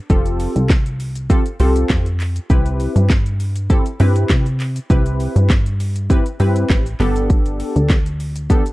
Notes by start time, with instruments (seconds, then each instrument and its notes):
0.10 analog synth bass F1, analog polysynth C4 F4 G4 A4, kick, shaker
0.26 closed hi-hat, shaker
0.40 open hi-hat, shaker
0.56 analog synth bass C2, closed hi-hat, shaker
0.70 kick, snare, clap, shaker
0.86 closed hi-hat, shaker
1.00 open hi-hat, shaker
1.15 closed hi-hat, shaker
1.30 analog polysynth C4 F4 G4 A4, kick, shaker
1.46 closed hi-hat, shaker
1.60 analog synth bass C2, analog polysynth C4 F4 G4 A4, open hi-hat, shaker
1.76 closed hi-hat, shaker
1.90 analog synth bass F2, kick, snare, clap, shaker
2.06 closed hi-hat, shaker
2.20 clap, open hi-hat, shaker
2.36 closed hi-hat, shaker
2.50 analog synth bass C2, analog polysynth C4 E4 G4 B4, kick, shaker
2.66 closed hi-hat, shaker
2.80 open hi-hat, shaker
2.96 analog synth bass G2, closed hi-hat, shaker
3.10 kick, snare, clap, shaker
3.26 closed hi-hat, shaker
3.40 open hi-hat, shaker
3.56 closed hi-hat, shaker
3.70 analog polysynth C4 E4 G4 A4, kick, shaker
3.86 closed hi-hat, shaker
4.00 analog synth bass G2, analog polysynth C4 E4 G4 B4, open hi-hat, shaker
4.16 closed hi-hat, shaker
4.30 analog synth bass C3, kick, snare, clap, shaker
4.46 closed hi-hat, shaker
4.60 clap, open hi-hat, shaker
4.76 closed hi-hat, shaker
4.90 analog synth bass C2, analog polysynth C4 E4 G4 B4, kick, shaker
5.06 closed hi-hat, shaker
5.20 open hi-hat, shaker
5.36 analog synth bass G2, closed hi-hat, shaker
5.50 kick, snare, clap, shaker
5.66 closed hi-hat, shaker
5.80 open hi-hat, shaker
5.96 closed hi-hat, shaker
6.10 analog polysynth C4 E4 G4 B4, kick, shaker
6.26 closed hi-hat, shaker
6.40 analog synth bass G2, analog polysynth C4 E4 G4 B4, open hi-hat, shaker
6.56 closed hi-hat, shaker
6.70 analog synth bass A1, kick, snare, clap, shaker
6.86 closed hi-hat, shaker
7.00 analog synth bass G1, analog polysynth B3 D4 G4 A4, clap, open hi-hat, shaker
7.16 closed hi-hat, shaker
7.30 kick, shaker
7.46 closed hi-hat, shaker
7.60 open hi-hat, shaker
7.76 analog synth bass D2, closed hi-hat, shaker
7.90 kick, snare, clap, shaker
8.06 closed hi-hat, shaker
8.20 open hi-hat, shaker
8.36 closed hi-hat, shaker
8.50 analog polysynth B3 D4 G4 A4, kick, shaker
8.66 closed hi-hat, shaker